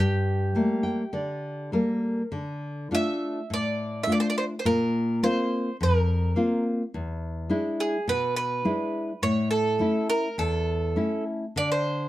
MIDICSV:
0, 0, Header, 1, 3, 480
1, 0, Start_track
1, 0, Key_signature, -1, "minor"
1, 0, Tempo, 589971
1, 1898, Time_signature, 4, 2, 24, 8
1, 2856, Tempo, 571429
1, 7176, Tempo, 582524
1, 10005, End_track
2, 0, Start_track
2, 0, Title_t, "Mandolin"
2, 0, Program_c, 0, 25
2, 0, Note_on_c, 0, 67, 65
2, 1385, Note_off_c, 0, 67, 0
2, 2397, Note_on_c, 0, 76, 94
2, 2874, Note_off_c, 0, 76, 0
2, 2877, Note_on_c, 0, 74, 86
2, 3297, Note_on_c, 0, 76, 80
2, 3302, Note_off_c, 0, 74, 0
2, 3363, Note_off_c, 0, 76, 0
2, 3368, Note_on_c, 0, 74, 79
2, 3433, Note_off_c, 0, 74, 0
2, 3436, Note_on_c, 0, 72, 76
2, 3508, Note_off_c, 0, 72, 0
2, 3517, Note_on_c, 0, 74, 68
2, 3580, Note_off_c, 0, 74, 0
2, 3584, Note_on_c, 0, 72, 69
2, 3632, Note_off_c, 0, 72, 0
2, 3766, Note_on_c, 0, 72, 55
2, 3819, Note_off_c, 0, 72, 0
2, 3822, Note_on_c, 0, 70, 76
2, 4266, Note_off_c, 0, 70, 0
2, 4305, Note_on_c, 0, 72, 79
2, 4745, Note_off_c, 0, 72, 0
2, 4805, Note_on_c, 0, 70, 67
2, 5470, Note_off_c, 0, 70, 0
2, 6462, Note_on_c, 0, 68, 71
2, 6682, Note_off_c, 0, 68, 0
2, 6704, Note_on_c, 0, 71, 85
2, 6924, Note_off_c, 0, 71, 0
2, 6934, Note_on_c, 0, 71, 86
2, 7647, Note_off_c, 0, 71, 0
2, 7650, Note_on_c, 0, 73, 94
2, 7876, Note_off_c, 0, 73, 0
2, 7879, Note_on_c, 0, 69, 84
2, 8361, Note_off_c, 0, 69, 0
2, 8365, Note_on_c, 0, 70, 82
2, 8588, Note_off_c, 0, 70, 0
2, 8606, Note_on_c, 0, 69, 67
2, 9300, Note_off_c, 0, 69, 0
2, 9583, Note_on_c, 0, 74, 82
2, 9697, Note_off_c, 0, 74, 0
2, 9700, Note_on_c, 0, 72, 71
2, 10005, Note_off_c, 0, 72, 0
2, 10005, End_track
3, 0, Start_track
3, 0, Title_t, "Nylon-string guitar"
3, 0, Program_c, 1, 24
3, 0, Note_on_c, 1, 43, 55
3, 428, Note_off_c, 1, 43, 0
3, 447, Note_on_c, 1, 55, 44
3, 453, Note_on_c, 1, 57, 41
3, 454, Note_on_c, 1, 58, 48
3, 677, Note_on_c, 1, 79, 53
3, 827, Note_off_c, 1, 55, 0
3, 830, Note_off_c, 1, 58, 0
3, 831, Note_off_c, 1, 57, 0
3, 901, Note_off_c, 1, 79, 0
3, 918, Note_on_c, 1, 50, 53
3, 922, Note_on_c, 1, 74, 52
3, 1377, Note_off_c, 1, 74, 0
3, 1393, Note_off_c, 1, 50, 0
3, 1401, Note_on_c, 1, 55, 42
3, 1408, Note_on_c, 1, 69, 36
3, 1409, Note_on_c, 1, 70, 57
3, 1414, Note_on_c, 1, 58, 42
3, 1796, Note_off_c, 1, 55, 0
3, 1798, Note_off_c, 1, 69, 0
3, 1803, Note_off_c, 1, 58, 0
3, 1865, Note_off_c, 1, 70, 0
3, 1885, Note_on_c, 1, 50, 63
3, 2358, Note_off_c, 1, 50, 0
3, 2367, Note_on_c, 1, 57, 45
3, 2374, Note_on_c, 1, 62, 43
3, 2376, Note_on_c, 1, 65, 51
3, 2754, Note_off_c, 1, 57, 0
3, 2758, Note_off_c, 1, 62, 0
3, 2758, Note_off_c, 1, 65, 0
3, 2848, Note_on_c, 1, 45, 58
3, 3321, Note_off_c, 1, 45, 0
3, 3326, Note_on_c, 1, 57, 43
3, 3328, Note_on_c, 1, 62, 37
3, 3333, Note_on_c, 1, 65, 49
3, 3715, Note_off_c, 1, 57, 0
3, 3716, Note_off_c, 1, 62, 0
3, 3720, Note_off_c, 1, 65, 0
3, 3815, Note_on_c, 1, 46, 64
3, 4281, Note_off_c, 1, 46, 0
3, 4300, Note_on_c, 1, 58, 53
3, 4303, Note_on_c, 1, 60, 45
3, 4304, Note_on_c, 1, 65, 53
3, 4681, Note_off_c, 1, 58, 0
3, 4682, Note_off_c, 1, 60, 0
3, 4683, Note_off_c, 1, 65, 0
3, 4784, Note_on_c, 1, 41, 65
3, 5240, Note_off_c, 1, 41, 0
3, 5248, Note_on_c, 1, 58, 49
3, 5254, Note_on_c, 1, 60, 42
3, 5258, Note_on_c, 1, 65, 55
3, 5633, Note_off_c, 1, 58, 0
3, 5636, Note_off_c, 1, 60, 0
3, 5639, Note_off_c, 1, 65, 0
3, 5739, Note_on_c, 1, 40, 61
3, 6203, Note_off_c, 1, 40, 0
3, 6204, Note_on_c, 1, 56, 50
3, 6208, Note_on_c, 1, 62, 43
3, 6211, Note_on_c, 1, 64, 55
3, 6592, Note_off_c, 1, 56, 0
3, 6595, Note_off_c, 1, 62, 0
3, 6597, Note_off_c, 1, 64, 0
3, 6691, Note_on_c, 1, 47, 62
3, 7161, Note_off_c, 1, 47, 0
3, 7171, Note_on_c, 1, 56, 46
3, 7176, Note_on_c, 1, 62, 44
3, 7176, Note_on_c, 1, 64, 50
3, 7553, Note_off_c, 1, 56, 0
3, 7555, Note_off_c, 1, 62, 0
3, 7556, Note_off_c, 1, 64, 0
3, 7646, Note_on_c, 1, 45, 61
3, 8113, Note_off_c, 1, 45, 0
3, 8114, Note_on_c, 1, 57, 45
3, 8119, Note_on_c, 1, 61, 40
3, 8124, Note_on_c, 1, 64, 50
3, 8503, Note_off_c, 1, 57, 0
3, 8506, Note_off_c, 1, 61, 0
3, 8509, Note_off_c, 1, 64, 0
3, 8599, Note_on_c, 1, 40, 53
3, 9071, Note_off_c, 1, 40, 0
3, 9075, Note_on_c, 1, 57, 42
3, 9079, Note_on_c, 1, 61, 38
3, 9083, Note_on_c, 1, 64, 45
3, 9470, Note_off_c, 1, 57, 0
3, 9473, Note_off_c, 1, 61, 0
3, 9473, Note_off_c, 1, 64, 0
3, 9570, Note_on_c, 1, 50, 60
3, 10005, Note_off_c, 1, 50, 0
3, 10005, End_track
0, 0, End_of_file